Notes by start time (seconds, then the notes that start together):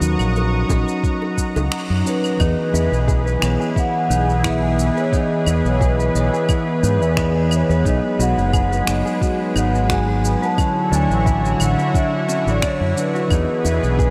Already playing: F#3 C#4 D#4 F#4 A#4 F#5 A#5 C#6 D#6
0.01 D#2, shaker
0.19 A#1, claves, shaker
0.36 high bongo, shaker
0.67 A#1 F#3 C#4 D#4, kick, high bongo, shaker
0.72 D#5
0.88 shaker
1.04 kick, shaker
1.22 high bongo
1.38 kick, shaker
1.56 C#2, high bongo, shaker
1.72 finger snap, shaker
1.90 F#2
2.05 F#3 C#4 D#4 B4 C#5, high bongo, shaker
2.24 claves, shaker
2.37 E2 E3 B3 D#4 G#4 B4 D#5, kick, claves, shaker
2.42 G#4
2.74 E2 E4, shaker
2.92 B1, shaker
3.08 G#4, kick, shaker
3.26 B4, shaker
3.40 B1 E3 B3 D#5, finger snap, claves, shaker
3.45 C#5
3.60 G#4, shaker
3.76 E4 F#5, kick, shaker
4.10 B1 D#4, shaker
4.30 shaker
4.43 E3 B3 E4 G#4 E5, finger snap, kick, claves, shaker
4.47 E5
4.63 G#4
4.79 shaker
4.97 B4 C#5, shaker
5.10 E3 B3 D#4 D#5, kick, shaker
5.15 G#4 D#5
5.46 E2 E4, claves, shaker
5.65 B1 C#5, shaker
5.81 G#4 B4, kick, shaker
5.99 B4, shaker
6.12 B1 E3 B3 D#5, shaker
6.17 B4 C#5
6.33 G#4, shaker
6.49 E4, kick, claves, shaker
6.83 G#2 D#4, shaker
7.01 E2, shaker
7.16 E3 B3 E4 G#4 D#5, finger snap, kick, shaker
7.35 G#4
7.46 D#5
7.51 C#5, claves, shaker
7.69 E2 B4, shaker
7.83 B1 F#3 G#3 B3 D#4, kick, shaker
7.88 G#4 D#5
8.19 B1 F#4 F#5, shaker
8.38 F#1, shaker
8.53 G#4, kick, claves, shaker
8.72 B4, shaker
8.85 F#1 F#3 B3 D#4, finger snap, shaker
8.90 C#5 D#5
9.05 G#4, shaker
9.21 F#4, kick, shaker
9.56 G#1 D#4 F#5, claves, shaker
9.75 shaker
9.88 F#3 B3 D#4 F#4 G#4 G#5, finger snap, kick, shaker
10.08 G#4
10.25 shaker
10.42 B4 A5, shaker
10.55 D3 F#3 C#4 E4 F#4 C#5, kick, claves, shaker
10.60 C#5
10.92 D2 D4 G#5, shaker
11.10 A1, shaker
11.26 E4, kick, shaker
11.44 F#4, shaker
11.58 A1 D3 F#3 E4, claves, shaker
11.62 E5 F#5
11.78 E4, shaker
11.94 D4 E5, kick, shaker
12.29 C#4, shaker
12.47 A1 D5, shaker
12.62 D4 C#5, finger snap, kick, claves, shaker
12.81 F#2 E4
12.95 F#3 D4 E4 D5, shaker
12.99 B4
13.15 F#4, shaker
13.28 E2 E3 B3 D#4 G#4 B4 D#5, kick, claves, shaker
13.33 G#4
13.65 E2 E4, high bongo, shaker
13.83 B1, shaker
13.99 G#4, kick, shaker